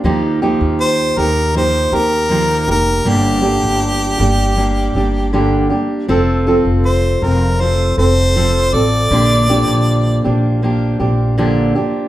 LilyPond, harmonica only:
\new Staff \with { instrumentName = "Harmonica" } { \time 4/4 \key bes \major \tempo 4 = 79 r4 c''8 bes'8 c''8 bes'4 bes'8 | g'2. r4 | r4 c''8 bes'8 c''8 c''4 d''8~ | d''4. r2 r8 | }